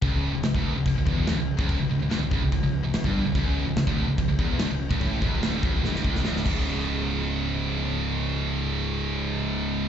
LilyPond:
<<
  \new Staff \with { instrumentName = "Distorted electric guitar" } { \clef bass \time 4/4 \key cis \phrygian \tempo 4 = 145 cis,8. cis,16 cis,16 d,8 cis,16 cis,16 cis,16 e,8 d,16 cis,8 cis,16~ | cis,16 cis,16 cis,16 cis,16 d,16 cis,16 cis,16 cis,16 cis,16 cis,8 cis,16 cis,16 g,8 cis,16 | cis,8. cis,16 cis,16 d,8 cis,16 cis,16 cis,16 e,8 d,16 cis,8 cis,16 | a,8 cis,8 d,8 cis,8 g,16 d,16 cis,8 d,8 <cis, gis, cis>8~ |
<cis, gis, cis>1~ | <cis, gis, cis>1 | }
  \new Staff \with { instrumentName = "Distorted electric guitar" } { \clef bass \time 4/4 \key cis \phrygian cis,8. cis,16 cis,16 d,8 cis,16 cis,16 cis,16 e,8 d,16 cis,8 cis,16~ | cis,16 cis,16 cis,16 cis,16 d,16 cis,16 cis,16 cis,16 cis,16 cis,8 cis,16 cis,16 g,8 cis,16 | cis,8. cis,16 cis,16 d,8 cis,16 cis,16 cis,16 e,8 d,16 cis,8 cis,16 | a,8 cis,8 d,8 cis,8 g,16 d,16 cis,8 d,8 <cis, gis, cis>8~ |
<cis, gis, cis>1~ | <cis, gis, cis>1 | }
  \new Staff \with { instrumentName = "Distorted electric guitar" } { \clef bass \time 4/4 \key cis \phrygian cis,8. cis,16 cis,16 d,8 cis,16 cis,16 cis,16 e,8 d,16 cis,8 cis,16~ | cis,16 cis,16 cis,16 cis,16 d,16 cis,16 cis,16 cis,16 cis,16 cis,8 cis,16 cis,16 g,8 cis,16 | cis,8. cis,16 cis,16 d,8 cis,16 cis,16 cis,16 e,8 d,16 cis,8 cis,16 | a,8 cis,8 d,8 cis,8 g,16 d,16 cis,8 d,8 <cis, gis, cis gis e'>8~ |
<cis, gis, cis gis e'>1~ | <cis, gis, cis gis e'>1 | }
  \new Staff \with { instrumentName = "Picked electric bass" } { \clef bass \time 4/4 \key cis \phrygian cis,,8. cis,,16 cis,,16 d,,8 cis,,16 cis,,16 cis,,16 e,,8 d,,16 cis,,8 cis,,16~ | cis,,16 cis,,16 cis,,16 cis,,16 d,,16 cis,,16 cis,,16 cis,,16 cis,,16 cis,,8 cis,,16 cis,,16 g,,8 cis,,16 | cis,,8. cis,,16 cis,,16 d,,8 cis,,16 cis,,16 cis,,16 e,,8 d,,16 cis,,8 cis,,16 | a,,8 cis,,8 d,,8 cis,,8 g,,16 d,,16 cis,,8 d,,8 cis,,8~ |
cis,,1~ | cis,,1 | }
  \new DrumStaff \with { instrumentName = "Drums" } \drummode { \time 4/4 <cymc bd>4 <cymc sn>16 bd8. <cymc bd>8 bd8 <cymc sn>8. bd16 | <cymc bd>4 <cymc sn>8 bd8 <cymc bd>4 <cymc sn>16 bd8. | <cymc bd>4 <cymc sn>16 bd8. <cymc bd>8 bd8 <cymc sn>8. bd16 | <cymc bd>8 bd8 <cymc sn>8 bd8 sn16 sn16 bd16 sn16 sn16 sn16 <cymc bd>8 |
r4 r4 r4 r4 | r4 r4 r4 r4 | }
>>